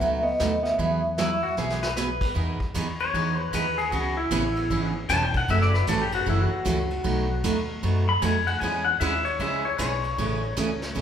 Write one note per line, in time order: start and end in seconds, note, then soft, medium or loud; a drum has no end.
0.00 0.33 C#2 medium
0.00 0.23 B2 medium
0.00 0.23 F#3 medium
0.00 0.23 A3 medium
0.00 0.22 B3 medium
0.00 0.23 D#4 medium
0.00 0.23 F#4 medium
0.00 0.25 E5 medium
0.00 brush sweep medium
0.00 kick soft
0.23 0.61 B3 medium
0.23 0.65 D#5 medium
0.40 0.73 D#2 medium
0.40 0.51 B2 medium
0.40 0.51 F#3 medium
0.40 0.52 A3 medium
0.40 0.52 D#4 medium
0.40 0.52 F#4 medium
0.40 snare medium
0.40 hi-hat pedal medium
0.62 1.91 B3 medium
0.62 1.90 E5 medium
0.62 snare soft
0.79 1.41 E2 loud
0.79 1.01 E3 medium
0.79 1.01 F#3 medium
0.79 1.01 B3 medium
0.79 1.01 F#4 medium
0.79 1.01 G#4 medium
0.79 brush sweep medium
0.79 kick soft
1.18 1.30 E3 medium
1.18 1.30 F#3 medium
1.18 1.30 B3 medium
1.18 1.43 E4 medium
1.18 1.30 F#4 medium
1.18 1.30 G#4 medium
1.18 snare medium
1.18 hi-hat pedal soft
1.43 1.57 F#4 medium
1.57 2.20 B1 medium
1.57 1.79 E3 medium
1.57 1.79 F#3 medium
1.57 1.79 B3 medium
1.57 1.80 F#4 medium
1.57 1.82 G#4 medium
1.57 1.80 G#4 medium
1.57 snare soft
1.70 snare medium
1.83 1.95 B4 medium
1.83 snare medium
1.96 2.08 E3 medium
1.96 2.08 F#3 medium
1.96 2.08 B3 medium
1.96 2.08 F#4 medium
1.96 2.09 G#4 medium
1.96 2.27 B4 medium
1.96 snare medium
1.96 hi-hat pedal medium
2.21 kick medium
2.21 crash medium
2.35 2.59 E2 medium
2.35 2.57 E3 medium
2.35 2.57 B3 medium
2.35 2.58 D#4 medium
2.35 2.58 G#4 medium
2.35 kick soft
2.60 muted upright bass stroke soft
2.60 kick medium
2.74 3.13 D#2 loud
2.74 2.86 E3 medium
2.74 2.86 B3 medium
2.74 2.86 D#4 medium
2.74 2.87 G#4 medium
2.74 kick soft
2.74 hi-hat pedal medium
2.74 ride medium
3.00 3.39 C#5 loud
3.00 ride soft
3.14 3.52 E2 medium
3.14 3.36 E3 medium
3.14 3.36 B3 medium
3.14 3.36 D#4 medium
3.14 3.36 G#4 medium
3.14 kick soft
3.14 ride medium
3.39 3.52 B4 loud
3.53 3.91 D#2 loud
3.53 3.64 E3 medium
3.53 3.65 B3 medium
3.53 3.65 D#4 medium
3.53 3.65 G#4 medium
3.53 3.78 B4 medium
3.53 kick soft
3.53 hi-hat pedal medium
3.53 ride medium
3.78 3.91 G#4 medium
3.78 ride medium
3.91 4.30 C#2 medium
3.91 4.14 C#3 medium
3.91 4.14 E3 medium
3.91 4.14 B3 medium
3.91 4.14 C#4 medium
3.91 4.16 F#4 medium
3.91 4.15 G#4 medium
3.91 kick soft
3.91 ride medium
4.17 4.93 E4 loud
4.31 4.69 A1 loud
4.31 4.42 C#3 medium
4.31 4.43 E3 medium
4.31 4.43 B3 medium
4.31 4.43 C#4 medium
4.31 4.43 G#4 loud
4.31 kick soft
4.31 hi-hat pedal medium
4.31 ride medium
4.56 ride soft
4.70 5.08 G#1 medium
4.70 4.92 C#3 medium
4.70 4.92 E3 medium
4.70 4.92 B3 medium
4.70 4.93 C#4 medium
4.70 4.93 G#4 medium
4.70 kick soft
4.70 ride medium
5.09 5.47 E1 loud
5.09 5.21 C#3 medium
5.09 5.21 E3 medium
5.09 5.21 B3 medium
5.09 5.22 C#4 medium
5.09 5.22 G#4 medium
5.09 5.22 A5 loud
5.09 kick soft
5.09 snare soft
5.09 hi-hat pedal medium
5.09 ride medium
5.23 5.36 G5 medium
5.34 5.49 F#5 loud
5.34 kick medium
5.34 ride medium
5.48 5.87 F#1 medium
5.48 5.71 C#3 medium
5.48 5.71 E3 medium
5.48 5.71 A3 medium
5.48 5.71 C#4 medium
5.48 5.71 F#4 medium
5.48 5.62 E5 medium
5.48 kick soft
5.48 ride medium
5.61 5.75 D5 medium
5.61 snare soft
5.74 5.87 B4 medium
5.74 snare soft
5.87 6.26 G#1 loud
5.87 6.00 C#3 medium
5.87 6.00 E3 medium
5.87 6.00 A3 medium
5.87 6.00 C#4 medium
5.87 6.00 F#4 medium
5.87 6.01 A4 medium
5.87 kick soft
5.87 hi-hat pedal medium
5.87 ride medium
6.02 6.14 G4 medium
6.12 6.27 F#4 loud
6.12 ride medium
6.26 6.50 F#1 medium
6.26 6.48 C#3 medium
6.26 6.49 E3 medium
6.26 6.49 A3 medium
6.26 6.49 C#4 medium
6.26 6.41 E4 medium
6.26 6.49 F#4 medium
6.26 kick soft
6.42 7.55 F#4 medium
6.53 muted upright bass stroke soft
6.65 7.04 C#2 medium
6.65 6.77 C#3 medium
6.65 6.77 E3 medium
6.65 6.77 A3 medium
6.65 6.78 C#4 medium
6.65 6.78 F#4 medium
6.65 kick soft
6.65 hi-hat pedal medium
6.65 ride medium
6.90 ride medium
7.04 7.43 B1 medium
7.04 7.27 B2 medium
7.04 7.27 F#3 medium
7.04 7.27 A3 medium
7.04 7.27 D#4 medium
7.04 7.27 F#4 medium
7.04 kick soft
7.04 ride medium
7.44 7.82 D#2 medium
7.44 7.56 B2 medium
7.44 7.56 F#3 medium
7.44 7.56 A3 medium
7.44 7.56 D#4 medium
7.44 7.56 F#4 medium
7.44 kick soft
7.44 hi-hat pedal medium
7.44 ride medium
7.83 8.21 F#2 medium
7.83 8.05 B2 medium
7.83 8.05 F#3 medium
7.83 8.05 A3 medium
7.83 8.05 D#4 medium
7.83 8.06 F#4 medium
7.83 kick soft
7.83 ride medium
8.09 8.22 B5 medium
8.22 8.61 F2 loud
8.22 8.34 B2 medium
8.22 8.34 F#3 medium
8.22 8.34 A3 medium
8.22 8.34 D#4 medium
8.22 8.34 F#4 medium
8.22 8.47 G#5 medium
8.22 kick soft
8.22 hi-hat pedal medium
8.22 ride medium
8.47 8.60 F#5 medium
8.47 ride medium
8.60 9.00 E2 medium
8.60 8.84 C#3 medium
8.60 8.84 G#3 medium
8.60 8.84 C#4 medium
8.60 8.85 E4 medium
8.60 8.85 G#4 medium
8.60 8.84 G#5 medium
8.60 kick soft
8.60 ride medium
8.85 8.99 F#5 medium
9.00 9.39 D#2 loud
9.00 9.12 C#3 medium
9.00 9.13 G#3 medium
9.00 9.13 C#4 medium
9.00 9.13 E4 medium
9.00 9.13 G#4 medium
9.00 9.25 E5 medium
9.00 kick soft
9.00 hi-hat pedal medium
9.00 ride medium
9.25 9.39 C#5 medium
9.25 ride soft
9.39 9.78 C#2 medium
9.39 9.62 C#3 medium
9.39 9.62 G#3 medium
9.39 9.62 C#4 medium
9.39 9.62 E4 medium
9.39 9.63 G#4 medium
9.39 9.65 E5 medium
9.39 kick soft
9.39 ride medium
9.65 9.77 C#5 medium
9.78 10.17 B1 loud
9.78 9.91 C#3 medium
9.78 9.91 G#3 medium
9.78 9.91 C#4 medium
9.78 9.91 E4 medium
9.78 9.91 G#4 medium
9.78 10.93 C#5 medium
9.78 kick soft
9.78 hi-hat pedal medium
9.78 ride medium
10.04 ride soft
10.18 10.56 A1 medium
10.18 10.40 C#3 medium
10.18 10.40 E3 medium
10.18 10.41 A3 medium
10.18 10.41 C#4 medium
10.18 10.41 G#4 medium
10.18 kick soft
10.18 ride medium
10.57 10.96 C#2 loud
10.57 10.69 C#3 medium
10.57 10.69 E3 medium
10.57 10.69 A3 medium
10.57 10.69 C#4 medium
10.57 10.69 G#4 medium
10.57 kick soft
10.57 hi-hat pedal medium
10.57 ride medium
10.82 snare soft
10.82 ride soft
10.95 11.01 G#1 medium
10.95 11.01 C#3 medium
10.95 11.01 E3 medium
10.95 11.01 A3 medium
10.95 11.01 C#4 medium
10.95 11.01 G#4 medium
10.95 kick soft
10.95 ride medium